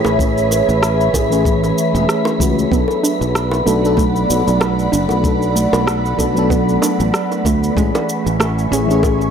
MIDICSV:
0, 0, Header, 1, 7, 480
1, 0, Start_track
1, 0, Tempo, 631579
1, 146, Time_signature, 4, 2, 24, 8
1, 7072, End_track
2, 0, Start_track
2, 0, Title_t, "Synth texture"
2, 0, Program_c, 0, 99
2, 0, Note_on_c, 0, 71, 89
2, 0, Note_on_c, 0, 83, 92
2, 7072, Note_off_c, 0, 71, 0
2, 7072, Note_off_c, 0, 83, 0
2, 7072, End_track
3, 0, Start_track
3, 0, Title_t, "Ambient pad"
3, 0, Program_c, 1, 92
3, 0, Note_on_c, 1, 68, 87
3, 0, Note_on_c, 1, 73, 78
3, 0, Note_on_c, 1, 76, 81
3, 2035, Note_off_c, 1, 68, 0
3, 2035, Note_off_c, 1, 73, 0
3, 2037, Note_off_c, 1, 76, 0
3, 2064, Note_on_c, 1, 57, 83
3, 2065, Note_on_c, 1, 74, 78
3, 2066, Note_on_c, 1, 83, 101
3, 2067, Note_on_c, 1, 78, 82
3, 5875, Note_off_c, 1, 74, 0
3, 5875, Note_off_c, 1, 83, 0
3, 5876, Note_off_c, 1, 78, 0
3, 5900, Note_on_c, 1, 76, 78
3, 5903, Note_on_c, 1, 85, 97
3, 5904, Note_on_c, 1, 80, 80
3, 7072, Note_off_c, 1, 57, 0
3, 7072, Note_off_c, 1, 76, 0
3, 7072, Note_off_c, 1, 80, 0
3, 7072, Note_off_c, 1, 85, 0
3, 7072, End_track
4, 0, Start_track
4, 0, Title_t, "FM electric piano"
4, 0, Program_c, 2, 5
4, 0, Control_c, 2, 64, 127
4, 0, Note_on_c, 2, 52, 88
4, 0, Note_on_c, 2, 57, 86
4, 0, Note_on_c, 2, 61, 79
4, 0, Note_on_c, 2, 68, 98
4, 114, Note_off_c, 2, 52, 0
4, 121, Note_off_c, 2, 57, 0
4, 127, Note_off_c, 2, 61, 0
4, 130, Note_on_c, 2, 52, 74
4, 133, Note_off_c, 2, 68, 0
4, 141, Note_on_c, 2, 57, 70
4, 153, Note_on_c, 2, 61, 66
4, 168, Note_on_c, 2, 68, 75
4, 832, Note_off_c, 2, 52, 0
4, 838, Note_off_c, 2, 57, 0
4, 844, Note_off_c, 2, 61, 0
4, 851, Note_off_c, 2, 68, 0
4, 858, Note_on_c, 2, 52, 78
4, 867, Note_on_c, 2, 57, 76
4, 873, Note_on_c, 2, 61, 71
4, 877, Note_on_c, 2, 68, 89
4, 962, Note_off_c, 2, 52, 0
4, 967, Note_off_c, 2, 57, 0
4, 970, Note_off_c, 2, 61, 0
4, 972, Note_off_c, 2, 68, 0
4, 988, Note_on_c, 2, 52, 86
4, 994, Note_on_c, 2, 57, 83
4, 1001, Note_on_c, 2, 61, 77
4, 1007, Note_on_c, 2, 68, 93
4, 1447, Note_off_c, 2, 52, 0
4, 1450, Note_off_c, 2, 57, 0
4, 1453, Note_off_c, 2, 61, 0
4, 1456, Note_off_c, 2, 68, 0
4, 1471, Note_on_c, 2, 52, 63
4, 1478, Note_on_c, 2, 57, 64
4, 1486, Note_on_c, 2, 61, 60
4, 1491, Note_on_c, 2, 68, 77
4, 1581, Note_off_c, 2, 52, 0
4, 1585, Note_off_c, 2, 57, 0
4, 1589, Note_off_c, 2, 61, 0
4, 1591, Note_off_c, 2, 68, 0
4, 1817, Note_on_c, 2, 52, 82
4, 1823, Note_on_c, 2, 57, 72
4, 1828, Note_on_c, 2, 61, 71
4, 1835, Note_on_c, 2, 66, 85
4, 2035, Note_off_c, 2, 52, 0
4, 2039, Note_off_c, 2, 57, 0
4, 2041, Note_off_c, 2, 61, 0
4, 2045, Note_off_c, 2, 66, 0
4, 2050, Note_on_c, 2, 54, 72
4, 2062, Note_on_c, 2, 59, 64
4, 2074, Note_on_c, 2, 62, 71
4, 2077, Control_c, 2, 64, 0
4, 2085, Note_on_c, 2, 69, 83
4, 2214, Control_c, 2, 64, 127
4, 2752, Note_off_c, 2, 54, 0
4, 2758, Note_off_c, 2, 59, 0
4, 2764, Note_off_c, 2, 62, 0
4, 2770, Note_off_c, 2, 69, 0
4, 2776, Note_on_c, 2, 54, 77
4, 2780, Note_on_c, 2, 59, 74
4, 2788, Note_on_c, 2, 62, 77
4, 2793, Note_on_c, 2, 69, 86
4, 2881, Note_off_c, 2, 54, 0
4, 2883, Note_off_c, 2, 59, 0
4, 2887, Note_off_c, 2, 62, 0
4, 2890, Note_off_c, 2, 69, 0
4, 2899, Note_on_c, 2, 54, 92
4, 2910, Note_on_c, 2, 59, 82
4, 2923, Note_on_c, 2, 62, 81
4, 2936, Note_on_c, 2, 69, 101
4, 3951, Note_off_c, 2, 54, 0
4, 3956, Note_off_c, 2, 59, 0
4, 3962, Note_off_c, 2, 62, 0
4, 3966, Note_on_c, 2, 54, 75
4, 3969, Note_off_c, 2, 69, 0
4, 3980, Note_on_c, 2, 59, 69
4, 3992, Note_on_c, 2, 62, 67
4, 4003, Note_on_c, 2, 69, 78
4, 4670, Note_off_c, 2, 54, 0
4, 4677, Note_off_c, 2, 59, 0
4, 4683, Note_off_c, 2, 62, 0
4, 4688, Note_on_c, 2, 54, 86
4, 4689, Note_off_c, 2, 69, 0
4, 4695, Note_on_c, 2, 59, 75
4, 4702, Note_on_c, 2, 62, 74
4, 4708, Note_on_c, 2, 69, 89
4, 4797, Note_off_c, 2, 54, 0
4, 4801, Note_off_c, 2, 59, 0
4, 4804, Note_off_c, 2, 62, 0
4, 4807, Note_off_c, 2, 69, 0
4, 4818, Note_on_c, 2, 54, 92
4, 4829, Note_on_c, 2, 59, 86
4, 4840, Note_on_c, 2, 62, 79
4, 4854, Note_on_c, 2, 69, 106
4, 5870, Note_off_c, 2, 54, 0
4, 5876, Note_off_c, 2, 59, 0
4, 5881, Note_off_c, 2, 62, 0
4, 5887, Note_on_c, 2, 52, 76
4, 5888, Note_off_c, 2, 69, 0
4, 5900, Note_on_c, 2, 57, 70
4, 5914, Note_on_c, 2, 61, 68
4, 5917, Control_c, 2, 64, 0
4, 5925, Note_on_c, 2, 68, 82
4, 6046, Control_c, 2, 64, 127
4, 6591, Note_off_c, 2, 52, 0
4, 6597, Note_off_c, 2, 57, 0
4, 6604, Note_off_c, 2, 61, 0
4, 6610, Note_off_c, 2, 68, 0
4, 6617, Note_on_c, 2, 52, 83
4, 6623, Note_on_c, 2, 57, 76
4, 6630, Note_on_c, 2, 61, 75
4, 6636, Note_on_c, 2, 68, 91
4, 6722, Note_off_c, 2, 52, 0
4, 6725, Note_off_c, 2, 57, 0
4, 6728, Note_off_c, 2, 61, 0
4, 6731, Note_off_c, 2, 68, 0
4, 6740, Note_on_c, 2, 52, 89
4, 6753, Note_on_c, 2, 57, 87
4, 6766, Note_on_c, 2, 61, 86
4, 6777, Note_on_c, 2, 68, 96
4, 7072, Note_off_c, 2, 52, 0
4, 7072, Note_off_c, 2, 57, 0
4, 7072, Note_off_c, 2, 61, 0
4, 7072, Note_off_c, 2, 68, 0
4, 7072, End_track
5, 0, Start_track
5, 0, Title_t, "Synth arpeggio sound"
5, 0, Program_c, 3, 84
5, 2064, Note_on_c, 3, 59, 83
5, 2206, Note_off_c, 3, 59, 0
5, 2305, Note_on_c, 3, 62, 76
5, 2524, Note_off_c, 3, 62, 0
5, 2783, Note_on_c, 3, 57, 75
5, 2925, Note_off_c, 3, 57, 0
5, 3021, Note_on_c, 3, 57, 83
5, 3164, Note_off_c, 3, 57, 0
5, 3499, Note_on_c, 3, 59, 78
5, 3643, Note_off_c, 3, 59, 0
5, 3740, Note_on_c, 3, 62, 73
5, 3961, Note_off_c, 3, 62, 0
5, 4221, Note_on_c, 3, 57, 69
5, 4364, Note_off_c, 3, 57, 0
5, 4459, Note_on_c, 3, 57, 79
5, 4603, Note_off_c, 3, 57, 0
5, 4941, Note_on_c, 3, 59, 78
5, 5084, Note_off_c, 3, 59, 0
5, 5182, Note_on_c, 3, 62, 75
5, 5402, Note_off_c, 3, 62, 0
5, 5667, Note_on_c, 3, 57, 73
5, 5807, Note_off_c, 3, 57, 0
5, 5906, Note_on_c, 3, 56, 79
5, 6046, Note_off_c, 3, 56, 0
5, 6381, Note_on_c, 3, 57, 80
5, 6524, Note_off_c, 3, 57, 0
5, 6625, Note_on_c, 3, 61, 72
5, 6844, Note_off_c, 3, 61, 0
5, 7072, End_track
6, 0, Start_track
6, 0, Title_t, "Fretless electric bass"
6, 0, Program_c, 4, 35
6, 41, Note_on_c, 4, 33, 80
6, 459, Note_off_c, 4, 33, 0
6, 522, Note_on_c, 4, 33, 83
6, 819, Note_off_c, 4, 33, 0
6, 866, Note_on_c, 4, 33, 86
6, 1297, Note_off_c, 4, 33, 0
6, 1479, Note_on_c, 4, 28, 86
6, 1556, Note_off_c, 4, 28, 0
6, 1824, Note_on_c, 4, 37, 83
6, 2004, Note_off_c, 4, 37, 0
6, 2063, Note_on_c, 4, 35, 90
6, 2159, Note_off_c, 4, 35, 0
6, 2441, Note_on_c, 4, 35, 79
6, 2738, Note_off_c, 4, 35, 0
6, 2786, Note_on_c, 4, 35, 87
6, 3217, Note_off_c, 4, 35, 0
6, 3269, Note_on_c, 4, 35, 79
6, 3362, Note_off_c, 4, 35, 0
6, 3401, Note_on_c, 4, 35, 82
6, 3699, Note_off_c, 4, 35, 0
6, 3749, Note_on_c, 4, 30, 98
6, 3842, Note_off_c, 4, 30, 0
6, 3879, Note_on_c, 4, 35, 84
6, 4299, Note_off_c, 4, 35, 0
6, 4355, Note_on_c, 4, 35, 84
6, 4656, Note_off_c, 4, 35, 0
6, 4703, Note_on_c, 4, 35, 94
6, 5135, Note_off_c, 4, 35, 0
6, 5319, Note_on_c, 4, 33, 87
6, 5396, Note_off_c, 4, 33, 0
6, 5664, Note_on_c, 4, 38, 86
6, 5844, Note_off_c, 4, 38, 0
6, 5904, Note_on_c, 4, 33, 93
6, 5999, Note_off_c, 4, 33, 0
6, 6280, Note_on_c, 4, 33, 88
6, 6578, Note_off_c, 4, 33, 0
6, 6626, Note_on_c, 4, 33, 88
6, 7057, Note_off_c, 4, 33, 0
6, 7072, End_track
7, 0, Start_track
7, 0, Title_t, "Drums"
7, 35, Note_on_c, 9, 60, 82
7, 46, Note_on_c, 9, 82, 31
7, 111, Note_off_c, 9, 60, 0
7, 122, Note_off_c, 9, 82, 0
7, 145, Note_on_c, 9, 36, 103
7, 155, Note_on_c, 9, 82, 42
7, 221, Note_off_c, 9, 36, 0
7, 231, Note_off_c, 9, 82, 0
7, 286, Note_on_c, 9, 82, 22
7, 362, Note_off_c, 9, 82, 0
7, 388, Note_on_c, 9, 60, 45
7, 393, Note_on_c, 9, 82, 73
7, 464, Note_off_c, 9, 60, 0
7, 469, Note_off_c, 9, 82, 0
7, 526, Note_on_c, 9, 82, 31
7, 602, Note_off_c, 9, 82, 0
7, 628, Note_on_c, 9, 37, 94
7, 633, Note_on_c, 9, 82, 45
7, 704, Note_off_c, 9, 37, 0
7, 709, Note_off_c, 9, 82, 0
7, 765, Note_on_c, 9, 82, 22
7, 841, Note_off_c, 9, 82, 0
7, 866, Note_on_c, 9, 36, 60
7, 867, Note_on_c, 9, 60, 62
7, 871, Note_on_c, 9, 82, 73
7, 942, Note_off_c, 9, 36, 0
7, 943, Note_off_c, 9, 60, 0
7, 947, Note_off_c, 9, 82, 0
7, 1004, Note_on_c, 9, 82, 31
7, 1080, Note_off_c, 9, 82, 0
7, 1105, Note_on_c, 9, 36, 111
7, 1112, Note_on_c, 9, 82, 42
7, 1181, Note_off_c, 9, 36, 0
7, 1188, Note_off_c, 9, 82, 0
7, 1242, Note_on_c, 9, 60, 46
7, 1246, Note_on_c, 9, 82, 21
7, 1318, Note_off_c, 9, 60, 0
7, 1322, Note_off_c, 9, 82, 0
7, 1354, Note_on_c, 9, 82, 72
7, 1430, Note_off_c, 9, 82, 0
7, 1484, Note_on_c, 9, 82, 30
7, 1560, Note_off_c, 9, 82, 0
7, 1588, Note_on_c, 9, 37, 84
7, 1592, Note_on_c, 9, 82, 41
7, 1664, Note_off_c, 9, 37, 0
7, 1668, Note_off_c, 9, 82, 0
7, 1712, Note_on_c, 9, 60, 77
7, 1726, Note_on_c, 9, 82, 21
7, 1788, Note_off_c, 9, 60, 0
7, 1802, Note_off_c, 9, 82, 0
7, 1825, Note_on_c, 9, 36, 107
7, 1833, Note_on_c, 9, 82, 75
7, 1901, Note_off_c, 9, 36, 0
7, 1909, Note_off_c, 9, 82, 0
7, 1966, Note_on_c, 9, 82, 31
7, 2042, Note_off_c, 9, 82, 0
7, 2064, Note_on_c, 9, 36, 110
7, 2076, Note_on_c, 9, 82, 42
7, 2140, Note_off_c, 9, 36, 0
7, 2152, Note_off_c, 9, 82, 0
7, 2188, Note_on_c, 9, 60, 50
7, 2210, Note_on_c, 9, 82, 21
7, 2264, Note_off_c, 9, 60, 0
7, 2286, Note_off_c, 9, 82, 0
7, 2314, Note_on_c, 9, 82, 73
7, 2390, Note_off_c, 9, 82, 0
7, 2446, Note_on_c, 9, 82, 31
7, 2522, Note_off_c, 9, 82, 0
7, 2548, Note_on_c, 9, 37, 89
7, 2553, Note_on_c, 9, 82, 41
7, 2624, Note_off_c, 9, 37, 0
7, 2629, Note_off_c, 9, 82, 0
7, 2671, Note_on_c, 9, 60, 72
7, 2686, Note_on_c, 9, 82, 21
7, 2747, Note_off_c, 9, 60, 0
7, 2762, Note_off_c, 9, 82, 0
7, 2790, Note_on_c, 9, 82, 70
7, 2866, Note_off_c, 9, 82, 0
7, 2925, Note_on_c, 9, 82, 31
7, 3001, Note_off_c, 9, 82, 0
7, 3016, Note_on_c, 9, 60, 45
7, 3022, Note_on_c, 9, 36, 106
7, 3032, Note_on_c, 9, 82, 44
7, 3092, Note_off_c, 9, 60, 0
7, 3098, Note_off_c, 9, 36, 0
7, 3108, Note_off_c, 9, 82, 0
7, 3161, Note_on_c, 9, 82, 20
7, 3237, Note_off_c, 9, 82, 0
7, 3269, Note_on_c, 9, 82, 73
7, 3345, Note_off_c, 9, 82, 0
7, 3402, Note_on_c, 9, 82, 30
7, 3478, Note_off_c, 9, 82, 0
7, 3502, Note_on_c, 9, 60, 66
7, 3505, Note_on_c, 9, 37, 87
7, 3510, Note_on_c, 9, 82, 38
7, 3578, Note_off_c, 9, 60, 0
7, 3581, Note_off_c, 9, 37, 0
7, 3586, Note_off_c, 9, 82, 0
7, 3641, Note_on_c, 9, 82, 19
7, 3717, Note_off_c, 9, 82, 0
7, 3748, Note_on_c, 9, 82, 74
7, 3824, Note_off_c, 9, 82, 0
7, 3868, Note_on_c, 9, 60, 50
7, 3880, Note_on_c, 9, 82, 30
7, 3944, Note_off_c, 9, 60, 0
7, 3956, Note_off_c, 9, 82, 0
7, 3982, Note_on_c, 9, 36, 103
7, 3986, Note_on_c, 9, 82, 37
7, 4058, Note_off_c, 9, 36, 0
7, 4062, Note_off_c, 9, 82, 0
7, 4121, Note_on_c, 9, 82, 21
7, 4197, Note_off_c, 9, 82, 0
7, 4229, Note_on_c, 9, 82, 73
7, 4305, Note_off_c, 9, 82, 0
7, 4356, Note_on_c, 9, 60, 72
7, 4363, Note_on_c, 9, 82, 31
7, 4432, Note_off_c, 9, 60, 0
7, 4439, Note_off_c, 9, 82, 0
7, 4465, Note_on_c, 9, 37, 92
7, 4469, Note_on_c, 9, 82, 44
7, 4541, Note_off_c, 9, 37, 0
7, 4545, Note_off_c, 9, 82, 0
7, 4603, Note_on_c, 9, 82, 20
7, 4679, Note_off_c, 9, 82, 0
7, 4701, Note_on_c, 9, 60, 37
7, 4702, Note_on_c, 9, 36, 56
7, 4709, Note_on_c, 9, 82, 71
7, 4777, Note_off_c, 9, 60, 0
7, 4778, Note_off_c, 9, 36, 0
7, 4785, Note_off_c, 9, 82, 0
7, 4840, Note_on_c, 9, 82, 30
7, 4916, Note_off_c, 9, 82, 0
7, 4942, Note_on_c, 9, 36, 101
7, 4950, Note_on_c, 9, 82, 40
7, 5018, Note_off_c, 9, 36, 0
7, 5026, Note_off_c, 9, 82, 0
7, 5084, Note_on_c, 9, 82, 21
7, 5160, Note_off_c, 9, 82, 0
7, 5184, Note_on_c, 9, 60, 69
7, 5191, Note_on_c, 9, 82, 69
7, 5260, Note_off_c, 9, 60, 0
7, 5267, Note_off_c, 9, 82, 0
7, 5321, Note_on_c, 9, 82, 29
7, 5397, Note_off_c, 9, 82, 0
7, 5425, Note_on_c, 9, 37, 91
7, 5430, Note_on_c, 9, 82, 36
7, 5501, Note_off_c, 9, 37, 0
7, 5506, Note_off_c, 9, 82, 0
7, 5560, Note_on_c, 9, 60, 45
7, 5561, Note_on_c, 9, 82, 21
7, 5636, Note_off_c, 9, 60, 0
7, 5637, Note_off_c, 9, 82, 0
7, 5662, Note_on_c, 9, 36, 96
7, 5670, Note_on_c, 9, 82, 72
7, 5738, Note_off_c, 9, 36, 0
7, 5746, Note_off_c, 9, 82, 0
7, 5803, Note_on_c, 9, 82, 29
7, 5879, Note_off_c, 9, 82, 0
7, 5903, Note_on_c, 9, 36, 98
7, 5911, Note_on_c, 9, 82, 37
7, 5979, Note_off_c, 9, 36, 0
7, 5987, Note_off_c, 9, 82, 0
7, 6042, Note_on_c, 9, 60, 82
7, 6043, Note_on_c, 9, 82, 21
7, 6118, Note_off_c, 9, 60, 0
7, 6119, Note_off_c, 9, 82, 0
7, 6150, Note_on_c, 9, 82, 67
7, 6226, Note_off_c, 9, 82, 0
7, 6284, Note_on_c, 9, 82, 30
7, 6360, Note_off_c, 9, 82, 0
7, 6387, Note_on_c, 9, 37, 94
7, 6387, Note_on_c, 9, 60, 44
7, 6391, Note_on_c, 9, 82, 41
7, 6463, Note_off_c, 9, 37, 0
7, 6463, Note_off_c, 9, 60, 0
7, 6467, Note_off_c, 9, 82, 0
7, 6526, Note_on_c, 9, 82, 20
7, 6602, Note_off_c, 9, 82, 0
7, 6634, Note_on_c, 9, 82, 72
7, 6710, Note_off_c, 9, 82, 0
7, 6768, Note_on_c, 9, 82, 30
7, 6844, Note_off_c, 9, 82, 0
7, 6863, Note_on_c, 9, 36, 104
7, 6863, Note_on_c, 9, 60, 69
7, 6873, Note_on_c, 9, 82, 40
7, 6939, Note_off_c, 9, 36, 0
7, 6939, Note_off_c, 9, 60, 0
7, 6949, Note_off_c, 9, 82, 0
7, 7002, Note_on_c, 9, 82, 19
7, 7072, Note_off_c, 9, 82, 0
7, 7072, End_track
0, 0, End_of_file